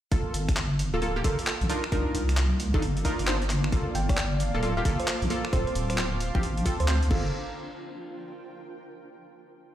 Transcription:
0.12 G1 A#3 F4 A4, kick, closed hi-hat
0.34 G1, closed hi-hat
0.49 finger snap, kick, closed hi-hat
0.57 clap
0.69 A#3
0.79 closed hi-hat
0.84 G5
0.94 D1 A#3 F4 A4
1.02 A#3 F4 A4, closed hi-hat
1.16 A#3 F4 G4
1.24 G1 A#3 F4 A4, kick, closed hi-hat
1.39 closed hi-hat
1.47 clap
1.61 A#1, closed hi-hat
1.69 D#3 D4 D#4 F4 A#4, closed hi-hat
1.84 finger snap
1.90 C2 D4 D#4 F4 A#4 D5 F5, kick, closed hi-hat
2.15 C2, closed hi-hat
2.29 finger snap, closed hi-hat
2.37 clap
2.60 closed hi-hat
2.74 G1 D4 D#4 F4 A4, kick
2.82 closed hi-hat
2.97 closed hi-hat
3.05 D4 D#4 F4 A#4, kick, closed hi-hat
3.19 G1, closed hi-hat
3.27 D4 D#4 F4 C5, clap
3.42 closed hi-hat
3.50 clap, closed hi-hat
3.64 finger snap
3.72 G1 A#3 F4 A4 F5 A5 D6, kick, closed hi-hat
3.95 G1 G5, closed hi-hat
4.09 D5, finger snap, kick, closed hi-hat
4.17 clap
4.40 closed hi-hat
4.54 D1 A#3 F4 A4 G5
4.63 A#3 F4 A4 F5, closed hi-hat
4.77 A#3 F4 G4 F5
4.85 G1 A#3 F4 A4, kick, closed hi-hat
5.00 C5, closed hi-hat
5.08 C5, clap
5.22 A#1, closed hi-hat
5.30 A#3 F4 A4, closed hi-hat
5.45 finger snap
5.53 D1 C4 D4 F4 A4 C5 F5 C6, kick, closed hi-hat
5.64 C5, closed hi-hat
5.75 D1, closed hi-hat
5.90 C5, finger snap, closed hi-hat
5.98 C5, clap
6.20 closed hi-hat
6.35 A1 C4 F4 G4, kick
6.43 closed hi-hat
6.57 closed hi-hat
6.66 C4 F4 A4, kick, closed hi-hat
6.80 D2 C5, closed hi-hat
6.88 C4 F4 C5, clap
7.03 closed hi-hat
7.11 G1 A#3 F4 A4 F5 A5 A#5 D6, kick, crash
7.19 A#4
7.49 G5

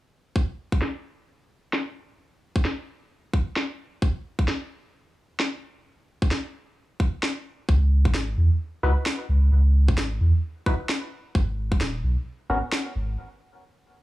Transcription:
0.36 kick
0.72 kick
0.82 snare
1.73 snare
2.56 kick
2.65 snare
3.33 kick
3.56 snare
4.02 kick
4.39 kick
4.48 snare
5.40 snare
6.22 kick
6.31 snare
7.00 kick
7.23 snare
7.69 C#2, kick
8.05 G#1, kick
8.14 snare
8.37 E2
8.83 C#2 D#4 E4 F#4 B4
9.06 snare
9.29 C#2
9.52 C#2
9.88 G#1, kick
9.98 snare
10.21 E2
10.66 D#4 E4 F#4 B4, kick
10.89 snare
11.35 G#1, kick
11.72 D#1, kick
11.81 snare
12.04 B1
12.49 G#1 B3 C#4 F#4 A#4
12.72 snare
12.95 G#1

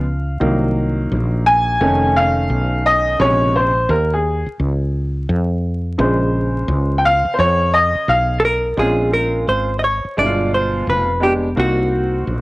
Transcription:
Already playing: C#2 F5
0.40 C2 D#3 F#3 A#3
1.11 A#1
1.46 G#5
1.81 F1 D#3 A3 C#4
2.16 F5
2.50 B1
2.86 D#5
3.19 A#1 C3 C#3 G#3 C#5
3.56 C5
3.89 D#2 A#4
4.13 G#4
4.46 muted fretless electric bass stroke
4.59 C#2
5.29 F2
5.98 A#1 C#3 G#3 C5
6.68 C#2
6.98 G5
7.05 F5
7.25 muted fretless electric bass stroke
7.34 C5
7.39 F2 C#5
7.74 D#5
7.95 muted fretless electric bass stroke
8.08 B1 F5
8.40 A4
8.45 A#4
8.77 A#1 G#3 C4 C#4 F4 G#4
9.13 A#4
9.48 G#1 C5
9.79 D#5
9.84 C#5
10.04 muted fretless electric bass stroke
10.17 G1 B2 G#3 D4 E4 D5
10.25 F4
10.54 C5
10.87 F1 B4
11.20 G#3 B3 D4 G4
11.56 C2 A#3 C4 D#4 F#4
12.27 A#1

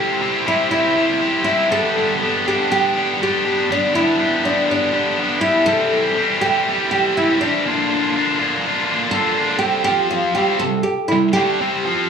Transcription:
Already playing: C3 G3 E4 G4
0.00 C4
0.21 G3 C4 E4 G4
0.46 C3 G3 C4 E4 G4
0.71 G3 C4 E4 G4
0.95 C3 G3 C4 E4 G4
1.19 G3 C4 E4 G4
1.44 E4 G4
1.49 C4
1.70 G2 D3 G3 B3 D4 G4 A4
1.96 G3 B3 D4 G4
2.21 G3 B3 D4 G4
2.47 G2 D3 G3 B3 D4 G4
2.71 G3 B3 D4 G4
2.95 G2 D3 G3 B3 D4 G4
3.21 G3 B3 D4 G4
3.45 G3 B3 D4 G4
3.69 G2 D3 G3 B3 D4 G4
3.93 G3 B3 D4 E4 G4
4.17 G3 B3 D4 G4
4.43 G2 D3 G3 B3 D4 G4
4.67 G3 B3 D4 G4
4.94 G2 D3 G3 B3 D4 G4
5.18 G3 B3 D4 G4
5.41 G3 B3 D4 E4 G4
5.66 C3 E3 G3 C4 G4 A4
5.91 G3 C4 G4
6.16 E3 G3 C4 G4
6.41 C3 E3 G3 C4 G4
6.67 E3 G3 C4 G4
6.91 C3 E3 G3 C4 G4
7.17 E3 G3 C4 E4 G4
7.41 G3 C4 D4 G4
7.66 A#2 D3 A#3 D4 F4
7.91 A#3 D4 F4
8.15 D3 A#3 D4 F4
8.39 A#2 D3 A#3 D4 F4
8.65 D3 A#3 D4 F4
8.89 A#2 D3 A#3 D4 F4
9.11 D3 A#3 D4 A4
9.16 F4
9.38 A#3 D4 F4
9.59 C3 G4
9.63 G3 C4
9.84 F3 C4 F4 G4
10.11 F4
10.35 C3 G3 C4 G4
10.59 C3 G3 A4
10.83 G4
11.08 C3 G3 E4
11.33 D3 A3 D4 G4
11.60 C3 G3 C4
11.85 F3 C4 F4

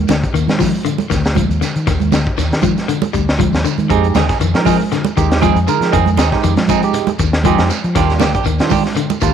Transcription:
0.08 D2 D3, snare, closed hi-hat, high conga, shekere
0.23 kick, closed hi-hat, shekere
0.34 D#2 D#3, closed hi-hat, shekere
0.48 D#3, snare, closed hi-hat, high conga, shekere
0.59 F3, kick, snare, open hi-hat, high conga, shekere
0.74 shekere
0.85 D3, closed hi-hat, shekere
0.98 closed hi-hat, high conga, shekere
1.10 D2 D#3, kick, snare, closed hi-hat, shekere
1.25 snare, closed hi-hat, shekere
1.35 F3, kick, closed hi-hat, high conga, shekere
1.49 D#2, closed hi-hat, shekere
1.61 D3, snare, closed hi-hat, shekere
1.76 D#3, closed hi-hat, shekere
1.87 D#2 D#3, kick, snare, closed hi-hat, shekere
2.00 closed hi-hat, high conga, shekere
2.12 D2 D3, snare, closed hi-hat, high conga, shekere
2.25 kick, shekere
2.37 D#2 D#3, snare, closed hi-hat, shekere
2.51 D#3, snare, closed hi-hat, shekere
2.62 F3, kick, closed hi-hat, high conga, shekere
2.76 snare, closed hi-hat, shekere
2.88 D3, closed hi-hat, shekere
3.02 closed hi-hat, high conga, shekere
3.13 D2 G3, kick, closed hi-hat, shekere
3.28 snare, shekere
3.39 F3, kick, closed hi-hat, high conga, shekere
3.53 D#2, snare, closed hi-hat, shekere
3.65 D3, closed hi-hat, shekere
3.78 D#3, closed hi-hat, high conga, shekere
3.90 F2 G#3 C4 D#4 G4 G#4, muted clean electric guitar stroke, kick, closed hi-hat, shekere
4.03 closed hi-hat, shekere
4.15 D#2 D3 C4 D#4 G#4, snare, closed hi-hat, high conga, shekere
4.29 D#4 G#4, kick, snare, closed hi-hat, shekere
4.40 F2 D#3, muted clean electric guitar stroke, closed hi-hat, shekere
4.54 F3 G#3 D#4 A#4, muted clean electric guitar stroke, snare, closed hi-hat, shekere
4.65 F3 C4 D#4 G#4, kick, snare, open hi-hat, high conga, shekere
4.79 muted clean electric guitar stroke, shekere
4.92 D3, snare, closed hi-hat, shekere
5.05 muted clean electric guitar stroke, closed hi-hat, high conga, shekere
5.16 D#2 D#3 G#3 D#4 G4, muted clean electric guitar stroke, kick, closed hi-hat, shekere
5.30 muted clean electric guitar stroke, snare, closed hi-hat, shekere
5.41 F3 C4 D#4 G#4, kick, closed hi-hat, high conga, shekere
5.55 F2, closed hi-hat, shekere
5.67 D3 G#3 D#4 A#4, muted clean electric guitar stroke, closed hi-hat, shekere
5.80 F3, muted clean electric guitar stroke, snare, closed hi-hat, shekere
5.92 F2 D#3 C4 D#4 G#4, kick, closed hi-hat, shekere
6.06 closed hi-hat, high conga, shekere
6.17 D#2 C4 D#4 G#4, muted clean electric guitar stroke, snare, closed hi-hat, high conga, shekere
6.31 G#3 D#4 G4, muted clean electric guitar stroke, kick, snare, shekere
6.43 F2 D#3, muted clean electric guitar stroke, closed hi-hat, shekere
6.57 F3, muted clean electric guitar stroke, snare, closed hi-hat, high conga, shekere
6.68 F3 C4 D#4 G#4, kick, closed hi-hat, high conga, shekere
6.82 G#3 D#4 G4, muted clean electric guitar stroke, closed hi-hat, shekere
6.93 muted clean electric guitar stroke, closed hi-hat, shekere
7.07 muted clean electric guitar stroke, closed hi-hat, high conga, shekere
7.19 D#2 D#3, muted clean electric guitar stroke, kick, closed hi-hat, shekere
7.33 muted clean electric guitar stroke, snare
7.44 F3 G#3 C4 D#4 G4 G#4, kick, closed hi-hat, high conga, shekere
7.58 F2, snare, closed hi-hat, shekere
7.70 muted clean electric guitar stroke, snare, closed hi-hat, shekere
7.84 F3, muted clean electric guitar stroke, closed hi-hat, shekere
7.95 D#2 D#3 G3 A#3 D4 F4 G4, kick, snare, closed hi-hat, shekere
8.09 snare, closed hi-hat, shekere
8.20 D2 D#3 A#3 D4 G4, snare, closed hi-hat, high conga, shekere
8.33 D4 G4, kick, closed hi-hat, shekere
8.44 D#2 D#3, closed hi-hat, shekere
8.58 D#3 G3 D4 F4, muted clean electric guitar stroke, snare, closed hi-hat, shekere
8.70 D4 G4, muted clean electric guitar stroke, kick, open hi-hat, high conga, shekere
8.84 muted clean electric guitar stroke, snare, shekere
8.95 D3, closed hi-hat, shekere
9.09 muted clean electric guitar stroke, closed hi-hat, high conga, shekere
9.21 D2 D#3 G3 D4 F4, muted clean electric guitar stroke, kick, closed hi-hat, shekere

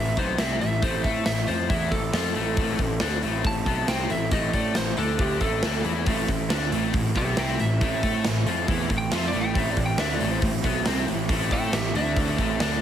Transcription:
Already playing: A1 A2 E3 A3 C4 E5
0.00 E4
0.17 B1 B2 A3 B3 C4 E4 C5, kick, open hi-hat
0.38 C2 C3 E3 A3 C4 E5, snare, open hi-hat
0.42 E4
0.60 A1 A2 C4 E4 E5, open hi-hat
0.65 A3
0.82 A1 A2 E3 A3 C4 E4 C5, kick, open hi-hat
1.03 A2 A3 E4 A4 E5, kick, open hi-hat
1.07 A3 C4
1.25 A1 A2 E3 A3 C4 E5, snare, open hi-hat
1.30 E4
1.47 F2 F3 C4 E4 F4 C5, open hi-hat
1.52 A3
1.69 E2 A2 E3 A3 E4 E5, kick, open hi-hat
1.73 C4 E4
1.91 A1 A2 C4 E4 A4, kick, open hi-hat
1.95 A3
2.13 F2 E3 F3 A3 C4 E4 F4, snare, open hi-hat
2.35 A1 A2 A3 C4 E4, open hi-hat
2.57 A1 A2 E3 A3 C4 E4, kick, open hi-hat
2.78 A1 A2 A3 C4 E4, kick, open hi-hat
3.00 D2 A2 D3 E3 A3 C4 D4, snare, open hi-hat
3.04 E4
3.22 A1 A2 A3 C4 E4, open hi-hat
3.44 A1 A2 E3 A3 C4 E4 A5, kick, open hi-hat
3.66 B1 B2 A3 B3 C4 E4, kick, open hi-hat
3.87 C2 C3 E3 A3 C4 E4 G5, snare, open hi-hat
4.09 A1 A2 A3 C4 E4 E5, open hi-hat
4.31 A1 A2 E3 A3 C4 E4 D#5, kick, open hi-hat
4.53 A2 A3 C4 E4 A4 D5, kick, open hi-hat
4.75 A1 A2 E3 A3 C4 E4 C5, snare, open hi-hat
4.96 D2 D3 A3 C4 D4 E4 A4, open hi-hat
5.18 A2 E3 A3 C4 E4 G4, kick, open hi-hat
5.40 A1 A2 A3 C4 E4 A4, kick, open hi-hat
5.62 D2 D3 E3 A3 C4 D4 E4, snare, open hi-hat
5.84 E2 E3 A3 C4 E4, open hi-hat
6.06 A1 A2 E3 A3 C4 E4, kick, open hi-hat
6.28 A1 A2 A3 C4 E4, kick, open hi-hat
6.49 D2 A2 D3 E3 A3 C4 D4 E4, snare, open hi-hat
6.71 A1 A2 A3 C4 E4, open hi-hat
6.93 A1 A2 E3 A3 C4 E4, kick, open hi-hat
7.15 B1 B2 A3 B3 C4 E4 G4 E5, kick, open hi-hat
7.36 C2 C3 E3 A3 C4 E4 E5 G5, snare, open hi-hat
7.59 A1 A2 A3 C4 E4 E5, open hi-hat
7.80 A1 A2 E3 A3 C4 E4, kick, open hi-hat
8.03 A2 A3 C4 E4 A4, kick, open hi-hat
8.23 A1 A2 E3 A3 C4 E4, snare, open hi-hat
8.46 F2 F3 A3 C4 E4 F4, open hi-hat
8.67 E2 A2 E3 A3 C4 E4, kick, open hi-hat
8.89 A1 A2 A3 C4 E4, kick, open hi-hat
8.98 G5
9.11 F2 E3 F3 A3 C4 E4 F4 E5, snare, open hi-hat
9.28 D5
9.33 A1 A2 A3 C4 E4, open hi-hat
9.41 G5
9.54 A1 A2 E3 A3 C4 E4 E5, kick, open hi-hat
9.70 D5
9.77 A1 A2 A3 C4 E4, kick, open hi-hat
9.86 G5
9.98 D2 A2 D3 E3 A3 C4 D4 E4 E5, snare, open hi-hat
10.15 D5
10.20 A1 A2 A3 C4 E4, open hi-hat
10.30 C5
10.42 A1 A2 E3 A3 C4 E4, kick, open hi-hat
10.64 B1 B2 A3 B3 C4 E4, kick, open hi-hat
10.85 C2 C3 E3 A3 C4 E4, snare, open hi-hat
11.07 A1 A2 A3 C4 E4, open hi-hat
11.29 A1 A2 E3 A3 C4 E4, kick, open hi-hat
11.50 A2 A3 C4 E4 A4 E5 G5, kick, open hi-hat
11.73 A1 A2 E3 A3 C4 E4 G4 E5, snare, open hi-hat
11.94 D2 D3 A3 C4 D4 E4 E5, open hi-hat
12.15 A2 E3 A3 C4 E4, kick, open hi-hat
12.38 A1 A2 A3 C4 E4, kick, open hi-hat
12.60 D2 D3 E3 A3 C4 D4 E4, snare, open hi-hat

